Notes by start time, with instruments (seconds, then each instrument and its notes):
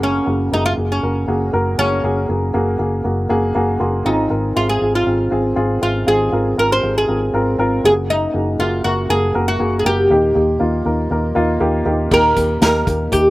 Already playing: fingered electric bass F#1, upright piano C#3 A#3 F#4 G#4
0.03 oud C#4
0.26 fingered electric bass F#1, upright piano A#3 F#4 G#4
0.52 fingered electric bass F#1, upright piano A#3 F#4 G#4, oud D#4
0.66 oud F4
0.77 fingered electric bass F#1, upright piano A#3 F#4 G#4
0.92 oud C#4
1.02 fingered electric bass F#1, upright piano A#3 F#4 A#4
1.28 fingered electric bass F#1, upright piano A#3 F#4 G#4
1.53 fingered electric bass F#1, upright piano A#3 F#4 A#4
1.78 fingered electric bass F#1, upright piano C#3 A#3 F#4 G#4, oud C#4
2.04 fingered electric bass F#1, upright piano A#3 F#4 G#4
2.29 fingered electric bass F#1, upright piano A#3 F#4 G#4
2.54 fingered electric bass F#1, upright piano A#3 F#4 G#4
2.79 fingered electric bass F#1, upright piano A#3 F#4 G#4
3.04 fingered electric bass F#1, upright piano A#3 F#4 G#4
3.29 fingered electric bass F#1, upright piano A#3 F#4 G#4 F#5
3.55 fingered electric bass F#1, upright piano A#3 F#4 G#4 G#5
3.80 fingered electric bass F#1, upright piano A#3 F#4 G#4 C6
4.05 fingered electric bass G#1, upright piano G#2 D#3 C4 F4 G#4, oud D#4
4.30 fingered electric bass G#1, upright piano C4 F4 A#4
4.55 fingered electric bass G#1, upright piano C4 F4 G#4, oud F4
4.69 oud G#4
4.81 fingered electric bass G#1, upright piano C4 F4 G#4
4.95 oud F4
5.06 fingered electric bass G#1, upright piano C4 F4 G#4
5.31 fingered electric bass G#1, upright piano C4 F4 G#4
5.56 fingered electric bass G#1, upright piano C4 F4 G#4
5.81 fingered electric bass G#1, upright piano C4 F4 G#4, oud F4
6.07 fingered electric bass G#1, upright piano G#2 D#3 C4 F4 G#4, oud G#4
6.32 fingered electric bass G#1, upright piano C4 F4 A#4
6.57 fingered electric bass G#1, upright piano C4 F4 A#4, oud A#4
6.72 oud C5
6.83 fingered electric bass G#1, upright piano C4 F4 G#4
6.98 oud G#4
7.08 fingered electric bass G#1, upright piano C4 F4 A#4
7.34 fingered electric bass G#1, upright piano C4 F4 A#4
7.59 fingered electric bass G#1, upright piano C4 F4 A#4
7.84 fingered electric bass F#1, upright piano C#3 A#3 F#4 G#4, oud G#4
8.10 oud D#4
8.34 fingered electric bass F#1, upright piano A#3 F#4 G#4
8.59 fingered electric bass F#1, upright piano A#3 F#4 G#4, oud F4
8.84 fingered electric bass F#1, upright piano A#3 F#4 A#4, oud F#4
9.09 fingered electric bass F#1, upright piano A#3 F#4 A#4, oud G#4
9.34 fingered electric bass F#1, upright piano A#3 F#4 A#4
9.48 oud F#4
9.60 fingered electric bass F#1, upright piano A#3 F#4 G#4
9.79 oud G#4
9.85 fingered electric bass F#1, upright piano A#3 F#4 A#4, oud G4
10.10 fingered electric bass D#2, upright piano A#2 A#3 D#4 G4
10.35 fingered electric bass D#2, upright piano A#3 D#4 G4
10.60 fingered electric bass D#2, upright piano A#3 D#4 F4
10.85 fingered electric bass D#2, upright piano A#3 D#4 A#4
11.11 fingered electric bass D#2, upright piano A#3 D#4 A#4
11.35 fingered electric bass D#2, upright piano A#3 D#4 F4
11.60 fingered electric bass D#2, upright piano A#3 D#4 G4
11.85 fingered electric bass D#2, upright piano A#3 D#4 G4
12.11 fingered electric bass D#2, upright piano A#2 A#3 D#4 G4, oud A#4, kick, crash
12.36 fingered electric bass D#2, upright piano A#3 D#4 G4, kick, closed hi-hat
12.61 fingered electric bass D#2, upright piano A#3 D#4 G4, oud A#4, snare, closed hi-hat
12.87 fingered electric bass D#2, upright piano A#3 D#4 G4, kick, closed hi-hat
13.12 fingered electric bass D#2, upright piano A#3 D#4 G4, oud G4, kick, closed hi-hat